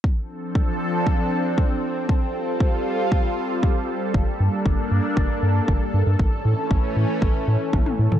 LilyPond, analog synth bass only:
\new Staff \with { instrumentName = "Analog synth bass" } { \clef bass \time 4/4 \key d \minor \tempo 4 = 117 r1 | r1 | g,,16 r16 g,16 r16 g,,16 r16 g,16 r16 g,,16 r16 g,16 r16 g,,16 r16 g,16 g,16 | a,,16 r16 a,16 r16 a,,16 r16 a,16 r16 a,,16 r16 a,16 r16 a,,16 r16 a,16 a,16 | }